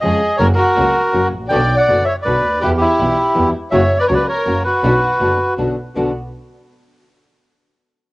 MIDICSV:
0, 0, Header, 1, 6, 480
1, 0, Start_track
1, 0, Key_signature, 2, "minor"
1, 0, Tempo, 370142
1, 519, Time_signature, 3, 2, 24, 8
1, 10540, End_track
2, 0, Start_track
2, 0, Title_t, "Bandoneon"
2, 0, Program_c, 0, 23
2, 11, Note_on_c, 0, 75, 109
2, 54, Note_on_c, 0, 68, 84
2, 469, Note_off_c, 0, 75, 0
2, 480, Note_on_c, 0, 73, 109
2, 492, Note_off_c, 0, 68, 0
2, 513, Note_on_c, 0, 70, 87
2, 596, Note_off_c, 0, 73, 0
2, 622, Note_off_c, 0, 70, 0
2, 712, Note_on_c, 0, 70, 110
2, 753, Note_on_c, 0, 66, 90
2, 1644, Note_off_c, 0, 70, 0
2, 1665, Note_off_c, 0, 66, 0
2, 1932, Note_on_c, 0, 79, 116
2, 1974, Note_on_c, 0, 74, 82
2, 2282, Note_off_c, 0, 79, 0
2, 2302, Note_on_c, 0, 78, 101
2, 2304, Note_off_c, 0, 74, 0
2, 2340, Note_on_c, 0, 74, 84
2, 2647, Note_off_c, 0, 78, 0
2, 2657, Note_on_c, 0, 76, 101
2, 2667, Note_off_c, 0, 74, 0
2, 2697, Note_on_c, 0, 73, 82
2, 2771, Note_off_c, 0, 76, 0
2, 2802, Note_off_c, 0, 73, 0
2, 2885, Note_on_c, 0, 74, 104
2, 2917, Note_on_c, 0, 71, 78
2, 3365, Note_off_c, 0, 71, 0
2, 3385, Note_on_c, 0, 71, 100
2, 3397, Note_off_c, 0, 74, 0
2, 3420, Note_on_c, 0, 67, 78
2, 3496, Note_off_c, 0, 71, 0
2, 3522, Note_off_c, 0, 67, 0
2, 3599, Note_on_c, 0, 67, 106
2, 3642, Note_on_c, 0, 64, 81
2, 4520, Note_off_c, 0, 67, 0
2, 4541, Note_off_c, 0, 64, 0
2, 4809, Note_on_c, 0, 76, 111
2, 4845, Note_on_c, 0, 73, 90
2, 5152, Note_off_c, 0, 76, 0
2, 5172, Note_off_c, 0, 73, 0
2, 5173, Note_on_c, 0, 74, 102
2, 5199, Note_on_c, 0, 71, 81
2, 5264, Note_off_c, 0, 74, 0
2, 5278, Note_off_c, 0, 71, 0
2, 5285, Note_on_c, 0, 73, 91
2, 5354, Note_on_c, 0, 74, 100
2, 5371, Note_off_c, 0, 73, 0
2, 5381, Note_on_c, 0, 71, 76
2, 5528, Note_off_c, 0, 74, 0
2, 5543, Note_off_c, 0, 71, 0
2, 5558, Note_on_c, 0, 73, 96
2, 5570, Note_on_c, 0, 70, 80
2, 6000, Note_off_c, 0, 73, 0
2, 6007, Note_off_c, 0, 70, 0
2, 6022, Note_on_c, 0, 71, 91
2, 6047, Note_on_c, 0, 66, 73
2, 7176, Note_off_c, 0, 71, 0
2, 7189, Note_off_c, 0, 66, 0
2, 10540, End_track
3, 0, Start_track
3, 0, Title_t, "Violin section"
3, 0, Program_c, 1, 48
3, 29, Note_on_c, 1, 68, 96
3, 479, Note_off_c, 1, 68, 0
3, 494, Note_on_c, 1, 70, 96
3, 607, Note_off_c, 1, 70, 0
3, 740, Note_on_c, 1, 66, 89
3, 1658, Note_off_c, 1, 66, 0
3, 1915, Note_on_c, 1, 74, 95
3, 2272, Note_off_c, 1, 74, 0
3, 2288, Note_on_c, 1, 74, 89
3, 2639, Note_off_c, 1, 74, 0
3, 2656, Note_on_c, 1, 73, 81
3, 2770, Note_off_c, 1, 73, 0
3, 2893, Note_on_c, 1, 71, 88
3, 3352, Note_off_c, 1, 71, 0
3, 3376, Note_on_c, 1, 67, 84
3, 3489, Note_off_c, 1, 67, 0
3, 3635, Note_on_c, 1, 64, 87
3, 4538, Note_off_c, 1, 64, 0
3, 4827, Note_on_c, 1, 73, 89
3, 5162, Note_off_c, 1, 73, 0
3, 5186, Note_on_c, 1, 71, 87
3, 5271, Note_off_c, 1, 71, 0
3, 5295, Note_on_c, 1, 70, 71
3, 5371, Note_off_c, 1, 70, 0
3, 5373, Note_on_c, 1, 71, 89
3, 5538, Note_off_c, 1, 71, 0
3, 5543, Note_on_c, 1, 70, 85
3, 5992, Note_off_c, 1, 70, 0
3, 6014, Note_on_c, 1, 66, 84
3, 7172, Note_off_c, 1, 66, 0
3, 10540, End_track
4, 0, Start_track
4, 0, Title_t, "String section"
4, 0, Program_c, 2, 48
4, 46, Note_on_c, 2, 56, 60
4, 49, Note_on_c, 2, 61, 54
4, 53, Note_on_c, 2, 65, 63
4, 245, Note_off_c, 2, 56, 0
4, 246, Note_off_c, 2, 61, 0
4, 248, Note_off_c, 2, 65, 0
4, 512, Note_on_c, 2, 58, 86
4, 518, Note_on_c, 2, 61, 79
4, 522, Note_on_c, 2, 66, 90
4, 716, Note_off_c, 2, 58, 0
4, 719, Note_off_c, 2, 61, 0
4, 721, Note_off_c, 2, 66, 0
4, 993, Note_on_c, 2, 58, 60
4, 996, Note_on_c, 2, 61, 56
4, 997, Note_on_c, 2, 66, 66
4, 1196, Note_off_c, 2, 58, 0
4, 1198, Note_off_c, 2, 61, 0
4, 1198, Note_off_c, 2, 66, 0
4, 1466, Note_on_c, 2, 58, 52
4, 1467, Note_on_c, 2, 61, 48
4, 1468, Note_on_c, 2, 66, 58
4, 1675, Note_off_c, 2, 58, 0
4, 1675, Note_off_c, 2, 61, 0
4, 1676, Note_off_c, 2, 66, 0
4, 1954, Note_on_c, 2, 59, 84
4, 1959, Note_on_c, 2, 62, 76
4, 1963, Note_on_c, 2, 66, 89
4, 2160, Note_off_c, 2, 59, 0
4, 2162, Note_off_c, 2, 62, 0
4, 2164, Note_off_c, 2, 66, 0
4, 2432, Note_on_c, 2, 59, 58
4, 2435, Note_on_c, 2, 62, 54
4, 2438, Note_on_c, 2, 66, 62
4, 2639, Note_off_c, 2, 59, 0
4, 2641, Note_off_c, 2, 62, 0
4, 2642, Note_off_c, 2, 66, 0
4, 2921, Note_on_c, 2, 59, 52
4, 2924, Note_on_c, 2, 62, 51
4, 2928, Note_on_c, 2, 66, 62
4, 3123, Note_off_c, 2, 59, 0
4, 3125, Note_off_c, 2, 62, 0
4, 3127, Note_off_c, 2, 66, 0
4, 3409, Note_on_c, 2, 59, 82
4, 3410, Note_on_c, 2, 64, 79
4, 3414, Note_on_c, 2, 67, 94
4, 3605, Note_off_c, 2, 59, 0
4, 3605, Note_off_c, 2, 64, 0
4, 3607, Note_off_c, 2, 67, 0
4, 3890, Note_on_c, 2, 59, 62
4, 3893, Note_on_c, 2, 64, 56
4, 3894, Note_on_c, 2, 67, 67
4, 4083, Note_off_c, 2, 59, 0
4, 4085, Note_off_c, 2, 64, 0
4, 4085, Note_off_c, 2, 67, 0
4, 4360, Note_on_c, 2, 59, 55
4, 4363, Note_on_c, 2, 67, 60
4, 4364, Note_on_c, 2, 64, 52
4, 4557, Note_off_c, 2, 59, 0
4, 4559, Note_off_c, 2, 64, 0
4, 4559, Note_off_c, 2, 67, 0
4, 4833, Note_on_c, 2, 58, 87
4, 4838, Note_on_c, 2, 61, 78
4, 4841, Note_on_c, 2, 66, 92
4, 5032, Note_off_c, 2, 58, 0
4, 5035, Note_off_c, 2, 61, 0
4, 5036, Note_off_c, 2, 66, 0
4, 5319, Note_on_c, 2, 58, 58
4, 5321, Note_on_c, 2, 61, 55
4, 5326, Note_on_c, 2, 66, 67
4, 5515, Note_off_c, 2, 58, 0
4, 5516, Note_off_c, 2, 61, 0
4, 5518, Note_off_c, 2, 66, 0
4, 5790, Note_on_c, 2, 58, 56
4, 5793, Note_on_c, 2, 66, 63
4, 5794, Note_on_c, 2, 61, 49
4, 5991, Note_off_c, 2, 58, 0
4, 5992, Note_off_c, 2, 66, 0
4, 5993, Note_off_c, 2, 61, 0
4, 6271, Note_on_c, 2, 59, 88
4, 6273, Note_on_c, 2, 62, 78
4, 6279, Note_on_c, 2, 66, 91
4, 6472, Note_off_c, 2, 59, 0
4, 6473, Note_off_c, 2, 62, 0
4, 6476, Note_off_c, 2, 66, 0
4, 6744, Note_on_c, 2, 59, 61
4, 6750, Note_on_c, 2, 62, 54
4, 6750, Note_on_c, 2, 66, 68
4, 6948, Note_off_c, 2, 59, 0
4, 6951, Note_off_c, 2, 62, 0
4, 6952, Note_off_c, 2, 66, 0
4, 7223, Note_on_c, 2, 59, 53
4, 7228, Note_on_c, 2, 62, 46
4, 7229, Note_on_c, 2, 66, 56
4, 7431, Note_off_c, 2, 59, 0
4, 7433, Note_off_c, 2, 62, 0
4, 7434, Note_off_c, 2, 66, 0
4, 7714, Note_on_c, 2, 62, 51
4, 7716, Note_on_c, 2, 59, 56
4, 7716, Note_on_c, 2, 66, 66
4, 7916, Note_off_c, 2, 62, 0
4, 7917, Note_off_c, 2, 59, 0
4, 7917, Note_off_c, 2, 66, 0
4, 10540, End_track
5, 0, Start_track
5, 0, Title_t, "Nylon-string guitar"
5, 0, Program_c, 3, 24
5, 29, Note_on_c, 3, 49, 83
5, 32, Note_on_c, 3, 53, 72
5, 36, Note_on_c, 3, 56, 79
5, 42, Note_on_c, 3, 65, 82
5, 43, Note_on_c, 3, 61, 87
5, 253, Note_off_c, 3, 49, 0
5, 255, Note_off_c, 3, 53, 0
5, 257, Note_off_c, 3, 56, 0
5, 260, Note_off_c, 3, 61, 0
5, 260, Note_off_c, 3, 65, 0
5, 508, Note_on_c, 3, 49, 96
5, 514, Note_on_c, 3, 54, 102
5, 515, Note_on_c, 3, 58, 103
5, 517, Note_on_c, 3, 61, 105
5, 523, Note_on_c, 3, 66, 110
5, 629, Note_off_c, 3, 49, 0
5, 632, Note_off_c, 3, 54, 0
5, 632, Note_off_c, 3, 58, 0
5, 633, Note_off_c, 3, 61, 0
5, 636, Note_off_c, 3, 66, 0
5, 986, Note_on_c, 3, 49, 69
5, 992, Note_on_c, 3, 54, 72
5, 995, Note_on_c, 3, 58, 84
5, 999, Note_on_c, 3, 61, 75
5, 1003, Note_on_c, 3, 66, 79
5, 1210, Note_off_c, 3, 49, 0
5, 1213, Note_off_c, 3, 54, 0
5, 1215, Note_off_c, 3, 58, 0
5, 1217, Note_off_c, 3, 61, 0
5, 1218, Note_off_c, 3, 66, 0
5, 1466, Note_on_c, 3, 49, 65
5, 1473, Note_on_c, 3, 54, 83
5, 1473, Note_on_c, 3, 58, 78
5, 1479, Note_on_c, 3, 61, 85
5, 1481, Note_on_c, 3, 66, 80
5, 1692, Note_off_c, 3, 49, 0
5, 1695, Note_off_c, 3, 58, 0
5, 1696, Note_off_c, 3, 54, 0
5, 1699, Note_off_c, 3, 61, 0
5, 1699, Note_off_c, 3, 66, 0
5, 1948, Note_on_c, 3, 47, 85
5, 1948, Note_on_c, 3, 50, 106
5, 1951, Note_on_c, 3, 59, 103
5, 1955, Note_on_c, 3, 62, 108
5, 1957, Note_on_c, 3, 66, 91
5, 2071, Note_off_c, 3, 47, 0
5, 2071, Note_off_c, 3, 50, 0
5, 2072, Note_off_c, 3, 59, 0
5, 2074, Note_off_c, 3, 62, 0
5, 2075, Note_off_c, 3, 66, 0
5, 2439, Note_on_c, 3, 47, 73
5, 2442, Note_on_c, 3, 50, 75
5, 2442, Note_on_c, 3, 59, 81
5, 2444, Note_on_c, 3, 62, 72
5, 2453, Note_on_c, 3, 66, 79
5, 2660, Note_off_c, 3, 47, 0
5, 2662, Note_off_c, 3, 50, 0
5, 2662, Note_off_c, 3, 59, 0
5, 2662, Note_off_c, 3, 62, 0
5, 2667, Note_off_c, 3, 66, 0
5, 2918, Note_on_c, 3, 47, 66
5, 2918, Note_on_c, 3, 50, 73
5, 2924, Note_on_c, 3, 59, 77
5, 2929, Note_on_c, 3, 62, 80
5, 2933, Note_on_c, 3, 66, 83
5, 3139, Note_off_c, 3, 47, 0
5, 3139, Note_off_c, 3, 50, 0
5, 3142, Note_off_c, 3, 59, 0
5, 3145, Note_off_c, 3, 62, 0
5, 3147, Note_off_c, 3, 66, 0
5, 3400, Note_on_c, 3, 47, 100
5, 3404, Note_on_c, 3, 59, 109
5, 3407, Note_on_c, 3, 52, 93
5, 3408, Note_on_c, 3, 55, 94
5, 3413, Note_on_c, 3, 64, 107
5, 3515, Note_off_c, 3, 47, 0
5, 3518, Note_off_c, 3, 59, 0
5, 3519, Note_off_c, 3, 52, 0
5, 3519, Note_off_c, 3, 55, 0
5, 3522, Note_off_c, 3, 64, 0
5, 3871, Note_on_c, 3, 47, 70
5, 3874, Note_on_c, 3, 52, 79
5, 3881, Note_on_c, 3, 55, 75
5, 3884, Note_on_c, 3, 64, 79
5, 3887, Note_on_c, 3, 59, 78
5, 4091, Note_off_c, 3, 47, 0
5, 4093, Note_off_c, 3, 52, 0
5, 4096, Note_off_c, 3, 55, 0
5, 4097, Note_off_c, 3, 64, 0
5, 4099, Note_off_c, 3, 59, 0
5, 4338, Note_on_c, 3, 47, 77
5, 4341, Note_on_c, 3, 52, 74
5, 4347, Note_on_c, 3, 59, 78
5, 4350, Note_on_c, 3, 64, 86
5, 4351, Note_on_c, 3, 55, 77
5, 4563, Note_off_c, 3, 47, 0
5, 4565, Note_off_c, 3, 52, 0
5, 4568, Note_off_c, 3, 59, 0
5, 4569, Note_off_c, 3, 64, 0
5, 4570, Note_off_c, 3, 55, 0
5, 4819, Note_on_c, 3, 54, 99
5, 4822, Note_on_c, 3, 49, 91
5, 4825, Note_on_c, 3, 58, 104
5, 4826, Note_on_c, 3, 66, 117
5, 4828, Note_on_c, 3, 61, 112
5, 4940, Note_off_c, 3, 54, 0
5, 4941, Note_off_c, 3, 49, 0
5, 4943, Note_off_c, 3, 58, 0
5, 4944, Note_off_c, 3, 61, 0
5, 4944, Note_off_c, 3, 66, 0
5, 5303, Note_on_c, 3, 58, 82
5, 5304, Note_on_c, 3, 49, 76
5, 5306, Note_on_c, 3, 54, 84
5, 5308, Note_on_c, 3, 61, 74
5, 5313, Note_on_c, 3, 66, 83
5, 5524, Note_off_c, 3, 58, 0
5, 5525, Note_off_c, 3, 49, 0
5, 5526, Note_off_c, 3, 54, 0
5, 5527, Note_off_c, 3, 61, 0
5, 5529, Note_off_c, 3, 66, 0
5, 5782, Note_on_c, 3, 49, 71
5, 5789, Note_on_c, 3, 54, 80
5, 5789, Note_on_c, 3, 58, 79
5, 5794, Note_on_c, 3, 61, 82
5, 5798, Note_on_c, 3, 66, 73
5, 6004, Note_off_c, 3, 49, 0
5, 6008, Note_off_c, 3, 54, 0
5, 6008, Note_off_c, 3, 58, 0
5, 6010, Note_off_c, 3, 61, 0
5, 6012, Note_off_c, 3, 66, 0
5, 6267, Note_on_c, 3, 47, 97
5, 6273, Note_on_c, 3, 50, 91
5, 6276, Note_on_c, 3, 59, 96
5, 6277, Note_on_c, 3, 62, 100
5, 6280, Note_on_c, 3, 66, 104
5, 6384, Note_off_c, 3, 47, 0
5, 6387, Note_off_c, 3, 50, 0
5, 6388, Note_off_c, 3, 59, 0
5, 6389, Note_off_c, 3, 62, 0
5, 6390, Note_off_c, 3, 66, 0
5, 6745, Note_on_c, 3, 47, 67
5, 6748, Note_on_c, 3, 59, 74
5, 6752, Note_on_c, 3, 50, 82
5, 6757, Note_on_c, 3, 62, 76
5, 6757, Note_on_c, 3, 66, 83
5, 6966, Note_off_c, 3, 47, 0
5, 6968, Note_off_c, 3, 59, 0
5, 6970, Note_off_c, 3, 50, 0
5, 6972, Note_off_c, 3, 62, 0
5, 6972, Note_off_c, 3, 66, 0
5, 7235, Note_on_c, 3, 47, 66
5, 7240, Note_on_c, 3, 50, 67
5, 7240, Note_on_c, 3, 59, 76
5, 7244, Note_on_c, 3, 62, 77
5, 7245, Note_on_c, 3, 66, 84
5, 7454, Note_off_c, 3, 47, 0
5, 7457, Note_off_c, 3, 50, 0
5, 7457, Note_off_c, 3, 59, 0
5, 7459, Note_off_c, 3, 62, 0
5, 7459, Note_off_c, 3, 66, 0
5, 7721, Note_on_c, 3, 47, 82
5, 7726, Note_on_c, 3, 50, 92
5, 7732, Note_on_c, 3, 59, 83
5, 7739, Note_on_c, 3, 62, 90
5, 7741, Note_on_c, 3, 66, 98
5, 7911, Note_off_c, 3, 47, 0
5, 7913, Note_off_c, 3, 50, 0
5, 7916, Note_off_c, 3, 59, 0
5, 7920, Note_off_c, 3, 62, 0
5, 7921, Note_off_c, 3, 66, 0
5, 10540, End_track
6, 0, Start_track
6, 0, Title_t, "Double bass"
6, 0, Program_c, 4, 43
6, 39, Note_on_c, 4, 41, 65
6, 241, Note_off_c, 4, 41, 0
6, 516, Note_on_c, 4, 30, 110
6, 718, Note_off_c, 4, 30, 0
6, 998, Note_on_c, 4, 37, 71
6, 1199, Note_off_c, 4, 37, 0
6, 1474, Note_on_c, 4, 30, 66
6, 1679, Note_off_c, 4, 30, 0
6, 1719, Note_on_c, 4, 33, 55
6, 1957, Note_off_c, 4, 33, 0
6, 1965, Note_on_c, 4, 35, 98
6, 2165, Note_off_c, 4, 35, 0
6, 2445, Note_on_c, 4, 30, 65
6, 2646, Note_off_c, 4, 30, 0
6, 2924, Note_on_c, 4, 35, 68
6, 3125, Note_off_c, 4, 35, 0
6, 3167, Note_on_c, 4, 38, 57
6, 3403, Note_off_c, 4, 38, 0
6, 3410, Note_on_c, 4, 40, 102
6, 3605, Note_off_c, 4, 40, 0
6, 3889, Note_on_c, 4, 35, 71
6, 4083, Note_off_c, 4, 35, 0
6, 4367, Note_on_c, 4, 40, 69
6, 4560, Note_off_c, 4, 40, 0
6, 4833, Note_on_c, 4, 30, 105
6, 5032, Note_off_c, 4, 30, 0
6, 5309, Note_on_c, 4, 37, 74
6, 5510, Note_off_c, 4, 37, 0
6, 5790, Note_on_c, 4, 30, 68
6, 5991, Note_off_c, 4, 30, 0
6, 6263, Note_on_c, 4, 35, 102
6, 6468, Note_off_c, 4, 35, 0
6, 6749, Note_on_c, 4, 30, 62
6, 6951, Note_off_c, 4, 30, 0
6, 7239, Note_on_c, 4, 35, 61
6, 7438, Note_off_c, 4, 35, 0
6, 7724, Note_on_c, 4, 35, 61
6, 7921, Note_off_c, 4, 35, 0
6, 10540, End_track
0, 0, End_of_file